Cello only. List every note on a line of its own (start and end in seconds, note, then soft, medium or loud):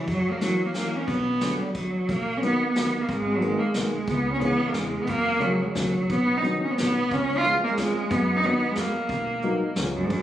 0.09 0.32 F#3 medium
0.31 0.42 A#3 medium
0.42 0.62 F#3 medium
0.66 0.74 A#3 medium
0.74 0.98 A#3 medium
0.96 1.09 C#4 medium
1.07 1.58 B3 medium
1.59 1.69 G3 soft
1.68 1.75 F#3 medium
1.76 2.12 F#3 medium
2.11 2.39 A#3 medium
2.37 2.43 C#4 medium
2.43 2.67 B3 loud
2.70 3.03 B3 medium
3.02 3.13 A#3 medium
3.12 3.37 G#3 medium
3.35 3.45 F#3 medium
3.43 3.61 G#3 loud
3.60 3.71 A#3 medium
3.69 3.76 G#3 medium
3.76 4.12 G#3 medium
4.11 4.32 B3 medium
4.32 4.41 C#4 medium
4.42 4.69 B3 loud
4.68 4.76 A#3 medium
4.76 5.04 G#3 medium
5.03 5.10 B3 medium
5.09 5.45 A#3 loud
5.43 5.63 F#3 loud
5.62 5.71 G#3 medium
5.70 5.76 F#3 medium
5.77 6.12 F#3 medium
6.11 6.39 B3 loud
6.38 6.54 D#4 medium
6.63 6.72 C#4 medium
6.71 6.79 B3 medium
6.80 7.15 B3 loud
7.13 7.39 C#4 loud
7.38 7.53 F4 loud
7.64 7.72 A#3 medium
7.70 7.77 G#3 medium
7.78 8.12 G#3 loud
8.11 8.38 B3 medium
8.37 8.48 D#4 loud
8.46 8.72 B3 loud
8.71 8.81 G#3 medium
8.79 9.78 A#3 medium
9.94 10.05 F#2 medium
10.04 10.12 G#2 medium
10.11 10.22 F#2 loud